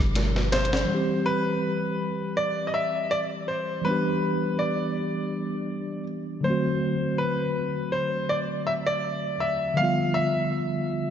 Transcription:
Already playing: G1 B2 F3 G3 D4 G4 B4
0.15 snare, closed hi-hat
0.36 snare
0.52 C5, snare, closed hi-hat, open hi-hat
0.65 closed hi-hat
0.73 snare
0.77 closed hi-hat
0.85 E3 G3
0.92 C4 G4
1.26 B4
2.37 D5
2.67 D#5
2.74 E5
3.11 D5
3.48 C5
3.81 E3 G3 B4
3.86 B3 D4
3.91 G4
4.59 D5
6.41 D3 F#3 C5
6.45 A3 C4
6.50 F#4
7.18 B4
7.92 C5
8.29 D5
8.67 E5
8.87 D5
9.40 E5
9.74 D3 F3 F5
9.79 G3 B3
9.83 F4
10.14 E5

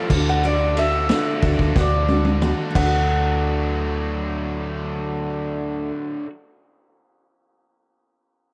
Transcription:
Already playing: F3 A3 C4 F4 A4 F5
0.09 D2 D3 A3 D4 F#4 A4, kick, crash
0.14 D4
0.29 F#5
0.43 D3 A3 D4 F#4 A4 D5
0.77 D4 F#4 A4 E5, ride
1.09 D3 A3 D4 F#4 A4, snare, ride
1.42 D2 D3 D4 F#4 A4, kick, ride
1.59 D2, kick
1.75 D2 D3 A3 D4 F#4 A4, kick, snare
1.80 D5
2.08 D4 F#4 A4, high tom
2.25 high tom
2.42 D3 A3 D4 F#4 A4, mid tom
2.70 D3
2.75 D2 D3 F#3 A3 D4 F#4 A4 F#5, kick, crash
2.79 D4 F#4
2.86 A4

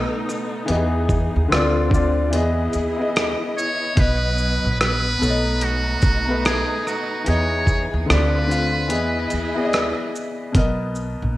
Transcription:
Already playing: B2 A3 B3 D#4 A4 D#5
0.29 cross-stick, shaker
0.66 E2 E3 B3 G4 G#4, closed hi-hat
0.70 D#5
0.75 G#4
1.09 kick, shaker
1.36 D#2
1.48 D2 D3 A3 C4 F4, cross-stick, closed hi-hat
1.53 D5
1.89 D3 C4 F4, kick
1.94 D5, shaker
2.30 E2 E3 B3 E4 G#4 D#5, closed hi-hat
2.35 D#5
2.73 D#2, closed hi-hat, shaker
2.96 B3 E4 G#4
3.02 D#5
3.16 cross-stick, closed hi-hat
3.58 C#5, shaker
3.95 B1 B2 F#3 B3 B4, kick, closed hi-hat
3.99 B4 D#5
4.38 shaker
4.65 A#1
4.81 B4, cross-stick, closed hi-hat
5.19 B1 B2 A3 B3 D#4 A4
5.23 C#5, closed hi-hat, shaker
5.30 D#5
5.61 F#4, closed hi-hat
6.02 B1, kick, closed hi-hat, shaker
6.26 B2 A3 B3
6.31 B4
6.45 G#4, cross-stick, closed hi-hat
6.87 F#4, cross-stick, shaker
7.24 E2 E3 B3 G#4, closed hi-hat
7.29 C#5 D#5
7.67 kick, shaker
7.93 D#2
8.06 D3 A3 C4 F4
8.10 D2 B4 D5, cross-stick, closed hi-hat
8.47 D3 C4 F4, closed hi-hat, shaker
8.52 F5
8.88 E2 E3 B3 E4 G#4 D#5, closed hi-hat
8.92 B3 G#4 D#5
9.30 D#2, closed hi-hat, shaker
9.54 B3 E4 G#4
9.59 D5
9.65 D#5
9.73 cross-stick, closed hi-hat
10.16 shaker
10.52 B1 B2 B3 A#4, kick, closed hi-hat
10.57 D#5
10.95 shaker
11.22 A#1

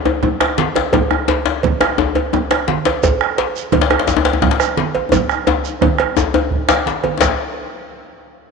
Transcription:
0.05 cowbell, djembe slap, djembe tone
0.23 bombo low, djembe tone, low conga
0.40 bombo rim, cowbell, djembe slap, high conga
0.58 bombo rim, djembe slap, high conga
0.75 cowbell, djembe slap, djembe tone, high conga
0.93 bombo low, cowbell, djembe tone, djembe bass, low conga
1.11 bombo rim, djembe slap, djembe tone
1.28 bombo rim, cowbell, djembe slap, djembe tone, high conga
1.46 djembe slap
1.63 bombo low, cowbell, high conga, low conga
1.81 bombo rim, cowbell, djembe slap, djembe tone
1.98 djembe slap, djembe tone, djembe bass
2.15 cowbell, djembe slap, djembe tone
2.33 djembe tone, low conga
2.51 bombo rim, cowbell, djembe slap, high conga
2.68 bombo rim, djembe slap, high conga
2.85 cowbell, djembe slap, djembe tone
3.03 bombo low, cowbell, low conga, djembe bass, shekere
3.21 bombo rim, djembe slap
3.38 bombo rim, cowbell, djembe slap, high conga
3.56 shekere
3.72 bombo low, cowbell, high conga, djembe tone, low conga
3.81 djembe slap
3.90 bombo rim, cowbell, djembe tone
3.99 djembe slap
4.07 djembe slap, djembe bass, shekere
4.17 djembe tone
4.25 cowbell, djembe slap
4.33 djembe tone
4.42 bombo low, djembe slap, low conga
4.51 djembe slap
4.60 bombo rim, cowbell, high conga, shekere
4.77 bombo rim, djembe slap, high conga
4.95 cowbell, high conga, djembe tone
5.12 bombo low, cowbell, djembe slap, djembe tone, djembe bass, low conga, shekere
5.29 bombo rim, shekere
5.47 bombo rim, cowbell, djembe slap, high conga, djembe tone
5.64 bombo rim, shekere
5.81 bombo rim, bombo low, cowbell, high conga, djembe tone, low conga
5.98 bombo rim, cowbell, djembe slap, high conga, djembe tone
6.17 djembe slap, djembe tone, djembe bass, shekere
6.34 cowbell, djembe tone
6.51 bombo low, low conga
6.69 bombo rim, cowbell, djembe slap, low conga, shekere
6.70 djembe slap
6.86 bombo rim, djembe slap, high conga, shekere
7.03 bombo rim, cowbell, high conga, djembe tone
7.20 bombo low, cowbell, djembe slap, djembe bass, low conga, shekere

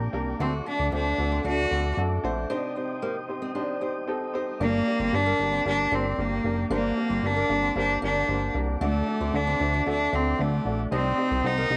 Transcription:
Already playing: G2 A#3 D4 G4 A#4 C5 D5 G5 A#5 D6
0.13 C2 A#3 D4 G4 A#4 D5
0.39 D2 D3 A3 C4 D4 F#4 A4 F#5 D6
0.65 A3 D4 F#4 A4
0.79 D2
0.92 D2 A3 C4 D4 F#4 C5
1.18 D2 A3 D4 F#4 A4
1.32 C4
1.44 D2 A3 D4 F#4 A4
1.71 D2 A3 C4 D4 F#4 A4
1.97 F#2 A3 D4 F#4 A4
2.23 A#1 A3 D4 F#4 C5
2.50 C3 C4 D4 D#4 G4 C5 D#5 G5 D#6
2.76 C4 D#4 G4 C5
3.02 A#3 C4 D#4 G4 C5
3.29 C4 D#4 G4 C5
3.42 C4
3.55 C4 D4 D#4 G4 C5
3.81 C4 D#4 G4 C5
4.08 C4 D#4 G4 A4
4.34 C4 D#4 G4 C5
4.60 G1 G2 A#3 D4 G4 A#4 D5 G5 D6
4.86 A#3 D4 G4 A#4 D5
5.00 G1 C4
5.13 G1 A#3 D4 G4 A#4 D5
5.26 A#3
5.39 G1 A#3 D4 G4 A#4 D5
5.52 C4
5.65 G1 A#3 D4 G4 A#4 D5
5.92 G1 A#3 C4 D4 G4 A#4 C5
6.18 G1 A#3 D4 G4 A#4 D5
6.44 F#1 A#3 D4 G4 A#4 D5
6.70 G1 G2 A#3 D4 G4 A#4 C5 F#5
6.97 A#3 D4 G4 A#4 D5
7.10 G1 C4
7.23 G1 A#3 D4 G4 A#4 D5
7.36 A#3
7.49 G1 A#3 D4 G4 A#4 D5
7.62 C4
7.76 G1 A#3 D4 G4 A#4 C5
8.02 G1 A#3 D4 G4 A#4 D5
8.28 G1 A#3 D4 G4 A#4 C5
8.54 C2 A#3 D4 G4 A#4 D5
8.81 D2 D3 A3 D4 F#4 A4 D5 F#5
9.07 A3 D4 F#4 A4 D5
9.20 D2 C4
9.34 D2 A3 D4 F#4 A4 D5
9.47 C4
9.60 D2 A3 D4 F#4 A4 C5
9.74 D4
9.86 D2 A3 D4 F#4 A4 D5
10.12 D2 A3 C4 D4 F#4 A4 D5
10.39 D2 A3 D4 F#4 A4 D5
10.65 A#1 A3 D4 F#4 A4 D5
10.91 C2 C3 C4 D4 D#4 G4 C5 D#5 G5 D#6
11.17 C4 D#4 G4 C5 D#5
11.31 C2 C4
11.44 C2 C4 D#4 G4 C5 F#5
11.58 A#3
11.70 C2 C4 D#4 G4 C5 D#5

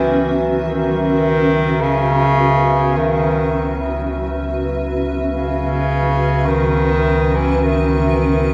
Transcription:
Already playing: C#2 C#3 E3 C#4 F#4 B4 E5
0.64 D#3
1.81 C#3
2.96 D#3
5.28 C#3
6.46 D#3
7.34 E3
7.62 D#3

